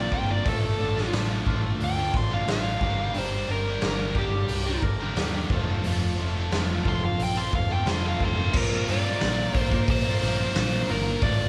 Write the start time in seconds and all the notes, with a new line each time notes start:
Already playing: F3 A#3 C4 F4 A#4
0.00 C4 D5
0.12 G1 A#3 C4 F4 A#4 G5, kick
0.29 C4 F4 A#4 D5
0.46 A1 A3 D4 F4 A4, kick, open hi-hat
0.63 muted distorted electric guitar stroke
0.79 A1 A3 D4 F4 A4
0.95 D4 F4 A4, snare
1.12 A1 A3 D4 F4, snare, open hi-hat
1.17 A4
1.29 D4 F4 A4
1.46 A1 A3 D4 F4 A4, kick
1.63 muted distorted electric guitar stroke
1.80 D2 D4 G5, open hi-hat
1.96 F4 A4
2.00 D4
2.13 A1 A3 D4 C6, muted distorted electric guitar stroke, kick, snare
2.17 F4 A4
2.31 D4 F4 A4 F5
2.46 A1 A3 D4 F4 A4, snare, open hi-hat
2.52 F5
2.65 D4 F4 A4
2.81 G1 G3 D4 G4 A#4, kick
2.98 D4 G4 A#4
3.14 G1 G3 D4 G4 A#4 C5, open hi-hat
3.32 muted distorted electric guitar stroke
3.48 G1 G3 D4 G4 A#4
3.65 D4 G4 A#4
3.81 G1 G3 D4 G4, snare, open hi-hat
3.85 A#4
3.99 D4 G4 A#4
4.15 G1 G3 D4 G4 A#4, kick
4.33 muted distorted electric guitar stroke
4.48 C2 D4, open hi-hat
4.66 D4 G4 A#4
4.82 G1 G3 D4 G4, muted distorted electric guitar stroke, kick
4.87 A#4
5.00 D4 G4 A#4
5.16 D#2 G3 D4 G4, snare, open hi-hat
5.20 A#4
5.34 D4 G4 A#4
5.50 F1 F3 A3 C4 F4, kick
5.54 A4
5.67 C4 F4 A4
5.83 F1 F3 A3 C4 F4 A4, open hi-hat
6.01 muted distorted electric guitar stroke
6.17 F1 A3 C4 F4 A4
6.35 C4 F4 A4
6.52 F1 F3 A3 C4 F4 A4, snare, open hi-hat
6.70 C4 F4 A4
6.85 F1 A3 C4 F4 A4 C6, kick
7.03 F5, muted distorted electric guitar stroke
7.18 A#1 C4, open hi-hat
7.23 G5
7.35 C4 F4 A4 C6
7.52 F1 A3 C4 F4 A4 F5, muted distorted electric guitar stroke, kick
7.69 C4 F4 A4 G5
7.85 F1 F3 A3 C4 F4 A4, snare, open hi-hat
7.90 C6
8.02 C4 F4 A4
8.08 F5
8.19 F1 A3 C4 F4 A4 A#4, kick
8.25 C6
8.36 F4 A4
8.40 C4
8.53 A#1 A#3 C4 F4 A#4, kick, crash
8.87 G2 A#3 C4 F4 A#4 D5, snare, open hi-hat
9.04 C4 F4 A#4
9.20 A#1 A#3 C4 F4, snare, open hi-hat
9.25 A#4
9.38 C4 F4 A#4
9.54 A#1 A#3 C4 F4 A#4 C5, kick, open hi-hat
9.70 C4 F4 A#4, muted distorted electric guitar stroke, kick
9.87 A#1 C5, kick, open hi-hat
10.05 C4 F4 A#4
10.22 A#1 A#3 C4 F4 A#4, snare, open hi-hat
10.38 C4 F4 A#4
10.54 A#1 A#3 C4 F4 A#4, snare, open hi-hat
10.59 A#4 C5
10.88 G1 A#3 C4 F4 A#4, open hi-hat
11.03 C4 F4 A#4
11.08 muted distorted electric guitar stroke
11.21 A1 A3 D4 F4 A4 D5, kick, open hi-hat
11.25 F4 A4